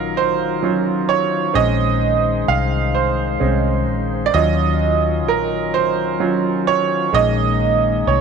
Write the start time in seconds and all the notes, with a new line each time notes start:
Already playing: A#1 D#3 F#3 C#4 D#4 F4 A#4 F5
0.17 C5
0.62 F#3 C#4 F4
1.09 C#5
1.53 A#1 G#3 C4 C#4 D#4 C5 D#5
2.48 C2 F5
2.95 C5
3.40 C2 G#3 C4 C#4 D#4
3.87 A#1
4.26 D5
4.32 D#2 D#3 F#3 C#4 F4 D#5
5.27 A#1 A#4
5.74 C5
6.20 F#3 C#4 F4
6.67 C#5
7.13 A#1 D#3 G#3 A#3 C#4 D#4 D#5
8.07 C2 C#5